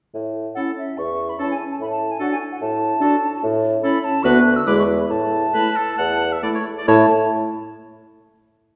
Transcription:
0.14 0.50 A2 soft
0.55 0.72 C#4 soft
0.55 0.71 E4 soft
0.55 0.71 A4 soft
0.55 0.61 F#5 medium
0.78 0.99 E5 soft
0.98 1.32 E2 soft
0.98 1.31 C#6 medium
1.29 1.39 B5 medium
1.39 1.54 C#4 soft
1.39 1.54 E4 soft
1.39 1.54 A4 soft
1.39 1.50 A5 medium
1.51 1.57 G#5 medium
1.72 1.76 A5 medium
1.80 2.14 A2 medium
1.80 1.86 B5 medium
1.91 2.13 A5 medium
2.11 2.20 G#5 medium
2.20 2.34 D4 soft
2.20 2.35 F#4 soft
2.20 2.35 A4 soft
2.20 2.31 F#5 medium
2.32 2.38 G#5 medium
2.52 2.56 F#5 medium
2.61 2.95 A2 medium
2.61 3.41 A5 medium
3.01 3.16 D4 medium
3.01 3.16 F#4 soft
3.01 3.16 A4 soft
3.43 3.77 A2 medium
3.83 3.98 C#4 medium
3.83 3.98 E4 medium
3.83 3.99 A4 medium
3.83 4.06 B5 medium
4.04 4.25 A5 medium
4.23 4.59 D2 medium
4.23 4.40 B3 medium
4.23 4.39 F#4 medium
4.23 4.40 B4 medium
4.23 4.58 F#6 loud
4.56 4.69 E6 medium
4.66 5.03 E2 medium
4.66 4.83 G#3 medium
4.66 4.82 E4 soft
4.66 4.83 B4 soft
4.66 4.78 D6 medium
4.79 4.85 C#6 medium
5.01 5.12 B5 medium
5.10 5.47 A2 medium
5.10 6.66 A5 medium
5.54 5.70 A3 soft
5.54 5.70 E4 soft
5.54 5.78 B4 medium
5.76 5.97 A4 medium
5.98 6.36 E2 medium
5.98 6.34 F#5 medium
6.32 6.42 E5 soft
6.43 6.59 A3 soft
6.43 6.59 E4 soft
6.43 6.48 D5 medium
6.55 6.65 C#5 medium
6.77 6.87 D5 medium
6.87 7.06 A2 medium
6.87 7.06 A3 medium
6.87 7.06 E4 medium
6.87 7.06 C#5 medium
6.87 7.13 A5 medium

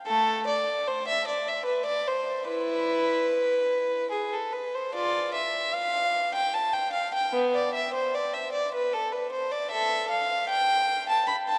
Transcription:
0.06 0.44 A3 medium
0.06 0.44 A4 medium
0.47 0.86 D5 medium
0.88 1.07 C5 medium
1.08 1.27 E5 medium
1.27 1.47 D5 medium
1.48 1.68 E5 medium
1.66 1.86 B4 medium
1.86 2.06 D5 medium
2.07 2.48 C5 medium
2.48 3.67 E4 medium
2.48 4.08 B4 medium
4.11 4.30 G#4 medium
4.33 4.53 A4 medium
4.53 4.73 B4 medium
4.75 4.94 C5 medium
4.94 5.31 F4 medium
4.94 5.34 D5 medium
5.34 5.73 E5 medium
5.74 6.34 F5 medium
6.35 6.54 G5 medium
6.53 6.73 A5 medium
6.73 6.93 G5 medium
6.93 7.12 F5 medium
7.14 7.33 G5 medium
7.33 7.53 B3 medium
7.54 7.73 D5 medium
7.74 7.93 E5 medium
7.94 8.13 C5 medium
8.14 8.34 D5 medium
8.33 8.53 E5 medium
8.52 8.72 D5 medium
8.74 8.93 B4 medium
8.93 9.13 A4 medium
9.12 9.32 B4 medium
9.32 9.51 C5 medium
9.52 9.71 D5 medium
9.71 10.08 A4 medium
9.71 10.10 E5 medium
10.10 10.49 F5 medium
10.49 11.07 G5 medium
11.09 11.28 A5 medium
11.28 11.35 B5 medium
11.48 11.59 A5 medium

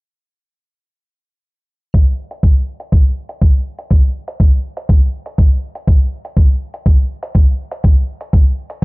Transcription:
1.94 kick loud
1.94 closed hi-hat soft
2.31 closed hi-hat medium
2.43 kick loud
2.43 closed hi-hat soft
2.80 closed hi-hat medium
2.92 kick loud
2.92 closed hi-hat soft
3.29 closed hi-hat medium
3.41 kick loud
3.41 closed hi-hat soft
3.79 closed hi-hat medium
3.90 kick loud
3.90 closed hi-hat soft
4.28 closed hi-hat medium
4.40 kick loud
4.40 closed hi-hat soft
4.77 closed hi-hat medium
4.89 kick loud
4.89 closed hi-hat soft
5.26 closed hi-hat medium
5.38 kick loud
5.38 closed hi-hat soft
5.75 closed hi-hat medium
5.87 kick loud
5.87 closed hi-hat soft
6.25 closed hi-hat medium
6.37 kick loud
6.37 closed hi-hat soft
6.74 closed hi-hat medium
6.86 kick loud
6.86 closed hi-hat soft
7.23 closed hi-hat medium
7.35 kick loud
7.35 closed hi-hat soft
7.71 closed hi-hat medium
7.84 kick loud
7.84 closed hi-hat soft
8.21 closed hi-hat medium
8.33 kick loud
8.33 closed hi-hat soft
8.70 closed hi-hat medium

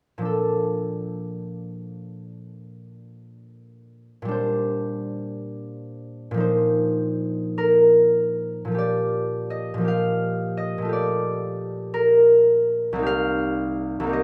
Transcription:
0.18 4.08 A#2 soft
0.18 4.09 F3 soft
0.22 4.12 D4 soft
0.22 4.15 A4 soft
4.22 6.30 A#2 medium
4.22 8.15 G3 soft
4.28 8.18 D4 soft
4.28 6.39 C5 soft
6.31 8.64 A#2 medium
6.31 8.66 F3 soft
6.37 8.77 D#4 soft
6.37 8.79 C5 soft
7.58 11.48 A#4 medium
8.65 9.73 A#2 soft
8.65 9.77 F3 soft
8.72 9.80 F4 soft
8.72 9.83 G4 soft
8.78 10.91 D5 medium
9.50 10.11 D#5 medium
9.74 10.77 A#2 soft
9.74 13.04 F3 soft
9.81 10.84 F4 soft
9.81 10.88 G4 soft
9.88 13.05 F5 medium
10.57 11.15 D#5 medium
10.78 13.02 A#2 soft
10.82 13.04 A3 soft
10.82 13.05 F4 soft
10.89 13.02 G4 soft
10.89 14.23 D5 medium
11.94 14.23 A#4 medium
12.93 13.99 C2 medium
12.93 14.02 A#3 soft
12.99 14.05 D#4 soft
12.99 14.08 G4 soft
13.06 14.23 F5 medium
14.00 14.23 C2 medium
14.00 14.23 A#3 soft
14.07 14.23 D#4 soft
14.07 14.23 G4 soft
14.13 14.23 D#5 medium

